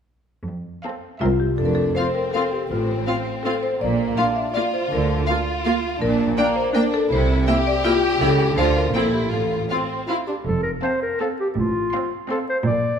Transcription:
0.46 0.76 F2 soft
0.84 1.13 C4 soft
0.84 1.12 A4 soft
0.84 1.12 F5 soft
1.21 1.51 C2 medium
1.21 1.50 C4 soft
1.21 1.39 F4 medium
1.21 1.50 A#4 soft
1.21 1.49 E5 soft
1.40 1.58 G4 medium
1.58 1.90 F1 soft
1.58 1.90 F2 soft
1.58 1.94 D4 soft
1.58 1.65 A4 medium
1.65 1.73 A#4 soft
1.75 1.96 A4 medium
1.95 2.05 C4 soft
1.95 2.68 C4 soft
1.95 2.06 F4 soft
1.95 2.13 C5 medium
1.95 2.04 F5 soft
2.15 2.32 A#4 soft
2.32 2.43 C4 soft
2.32 2.43 F4 soft
2.32 2.49 A4 medium
2.32 2.41 F5 soft
2.53 2.69 G4 soft
2.69 3.01 A1 soft
2.69 3.01 A2 soft
2.69 3.78 C4 soft
2.69 3.22 F4 medium
3.07 3.15 C4 soft
3.07 3.15 F4 soft
3.07 3.15 F5 soft
3.43 3.53 C4 soft
3.43 3.52 F4 soft
3.43 3.61 A4 soft
3.43 3.53 F5 soft
3.63 3.80 C5 medium
3.80 4.12 A#1 soft
3.80 4.11 A#2 soft
3.80 4.16 A#3 soft
3.80 4.15 D5 medium
4.17 4.26 A#3 soft
4.17 4.55 D4 soft
4.17 4.25 F4 soft
4.17 4.25 F5 soft
4.17 4.35 F5 medium
4.36 4.53 E5 medium
4.53 4.64 A#3 soft
4.53 5.25 F4 medium
4.53 4.64 F4 soft
4.53 4.71 D5 medium
4.53 4.62 F5 soft
4.73 4.90 C5 medium
4.91 5.22 D2 soft
4.91 5.22 D3 medium
4.91 5.43 A#4 medium
5.27 5.38 A#3 soft
5.27 6.00 F4 medium
5.27 5.37 F4 soft
5.27 5.35 F5 soft
5.64 5.73 A#3 medium
5.64 5.73 F4 soft
5.64 5.72 F5 soft
6.00 6.31 A#1 medium
6.00 6.31 A#2 medium
6.00 6.36 D4 medium
6.00 6.35 A#4 medium
6.37 6.73 A#3 medium
6.37 6.46 A#3 soft
6.37 6.46 D4 soft
6.37 6.55 D5 medium
6.37 6.46 G5 medium
6.56 6.73 C5 medium
6.75 6.83 A#3 medium
6.75 6.83 D4 soft
6.75 7.10 D4 medium
6.75 6.91 A#4 medium
6.75 6.83 G5 soft
6.94 7.10 A4 medium
7.10 7.41 C2 medium
7.10 7.41 C3 medium
7.10 7.46 E4 medium
7.10 7.46 C5 medium
7.47 7.56 A#3 soft
7.47 7.56 E4 soft
7.47 8.55 G4 medium
7.47 7.65 E5 medium
7.47 7.55 G5 medium
7.67 7.83 D5 medium
7.84 7.92 A#3 medium
7.84 7.92 E4 soft
7.84 8.01 F4 medium
7.84 7.93 G5 medium
8.03 8.20 G4 medium
8.19 8.50 C#2 medium
8.19 8.50 C#3 medium
8.19 8.29 A3 soft
8.19 8.29 E4 soft
8.19 8.55 A4 medium
8.19 8.29 G5 soft
8.56 8.87 D2 medium
8.56 8.87 D3 soft
8.56 8.66 A3 soft
8.56 8.93 F4 medium
8.56 8.66 F4 soft
8.56 8.74 C5 medium
8.56 8.65 F5 soft
8.77 8.94 A#4 medium
8.93 9.25 A#1 medium
8.93 9.25 A#2 soft
8.93 9.03 C4 soft
8.93 9.31 E4 medium
8.93 9.03 E4 soft
8.93 9.12 A4 medium
8.93 9.02 G5 soft
9.14 9.31 G4 medium
9.31 9.64 A1 soft
9.31 9.63 A2 soft
9.31 9.66 F4 soft
9.31 10.23 A4 medium
9.69 10.05 C4 soft
9.69 9.79 C4 soft
9.69 9.80 F4 soft
9.69 9.77 F5 soft
10.06 10.18 C4 soft
10.06 10.15 E4 medium
10.06 10.15 F4 soft
10.06 10.17 F4 soft
10.06 10.16 F5 soft
10.27 10.34 D4 soft
10.27 10.35 G4 soft
10.45 10.75 F1 medium
10.45 10.75 F2 medium
10.45 10.62 A4 medium
10.63 10.72 A#4 medium
10.83 11.11 C4 soft
10.83 11.01 C5 medium
10.83 11.10 F5 soft
10.83 11.10 A5 soft
11.02 11.20 A#4 medium
11.19 11.48 C4 soft
11.19 11.29 A4 medium
11.19 11.47 F5 soft
11.19 11.47 A5 soft
11.40 11.48 G4 medium
11.56 11.86 A1 medium
11.56 11.85 A2 medium
11.56 12.12 F4 medium
11.93 12.21 C4 soft
11.93 12.21 F5 soft
11.93 12.21 C6 medium
12.30 12.57 C4 medium
12.30 12.39 A4 medium
12.30 12.58 F5 soft
12.30 12.58 C6 soft
12.49 12.58 C5 medium
12.66 12.96 A#1 soft
12.66 12.96 A#2 medium
12.66 12.99 D5 medium

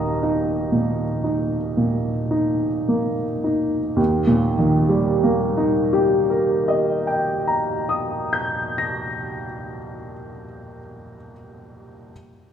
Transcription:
0.00 0.68 D#1 soft
0.00 0.68 D#2 soft
0.00 0.72 A#2 soft
0.00 0.52 A#3 soft
0.00 0.23 D#4 soft
0.00 3.13 D#5 soft
0.00 3.13 A#5 soft
0.00 3.16 D#6 soft
0.23 1.03 D#4 soft
0.72 1.56 A#2 soft
1.24 2.10 D#4 soft
1.77 2.66 A#2 soft
2.31 3.22 D#4 soft
2.88 3.77 A#3 soft
3.44 3.97 D#4 soft
3.96 8.83 D#2 soft
4.27 9.14 A#2 soft
4.58 9.45 D#3 soft
4.89 9.76 G3 soft
5.24 10.11 A#3 soft
5.57 10.44 D#4 soft
5.93 10.80 G4 soft
6.30 11.17 A#4 soft
6.68 11.32 D#5 soft
7.07 11.32 G5 soft
7.47 11.32 A#5 soft
7.89 11.32 D#6 soft
8.33 11.32 G6 soft
8.78 11.33 A#6 soft

